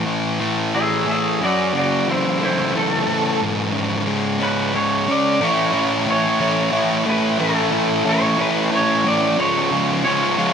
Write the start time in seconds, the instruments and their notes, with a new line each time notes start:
Already playing: distorted electric guitar A2
0.05 distorted electric guitar E3
0.40 distorted electric guitar A3
0.74 distorted electric guitar E3, clean electric guitar G#4 E5
1.06 distorted electric guitar A3, clean electric guitar G#4
1.10 clean electric guitar E5
1.40 distorted electric guitar F#2, clean electric guitar F#4
1.44 clean electric guitar D5
1.73 distorted electric guitar C#3
1.77 clean electric guitar F#4 D5
2.07 distorted electric guitar E3, clean electric guitar E4
2.12 clean electric guitar C5
2.41 distorted electric guitar A3, clean electric guitar E4 C5
2.73 distorted electric guitar E3
2.77 clean electric guitar A4
3.07 distorted electric guitar A3
3.41 distorted electric guitar G#2
3.73 distorted electric guitar C#3
4.07 distorted electric guitar G#3
4.40 distorted electric guitar C#4, clean electric guitar B4
4.74 distorted electric guitar G#3, clean electric guitar C#5
5.08 distorted electric guitar C#4, clean electric guitar D5
5.41 distorted electric guitar A2 E3 A3 C#4 E4, clean electric guitar C#5
5.72 distorted electric guitar A2 E3 A3 C#4 E4
6.06 distorted electric guitar A2 E3 A3 C#4 E4
6.11 clean electric guitar C#5
6.40 distorted electric guitar A2 E3 A3 C#4 E4
6.71 distorted electric guitar A2 E3 A3 C#4 E4
7.06 distorted electric guitar A2 E3 A3 C#4 E4, clean electric guitar B4
7.38 distorted electric guitar A2 E3 A3 C#4 E4, clean electric guitar A4
7.71 distorted electric guitar A2 E3 A3 C#4 E4
8.04 distorted electric guitar A2 E3 A3 C#4 E4
8.09 clean electric guitar C#5
8.38 distorted electric guitar A2 E3 A3 C#4 E4, clean electric guitar B4
8.70 distorted electric guitar A2 E3 A3 C#4 E4
8.75 clean electric guitar C#5
9.04 distorted electric guitar A2 E3 A3 C#4 E4, clean electric guitar D5
9.37 distorted electric guitar C#3 F3 G#3 C#4 F4, clean electric guitar C#5
9.71 distorted electric guitar C#3 F3 G#3 C#4 F4
10.04 distorted electric guitar C#3 F3 G#3 C#4 F4, clean electric guitar C#5
10.37 distorted electric guitar C#3 F3 G#3 C#4 F4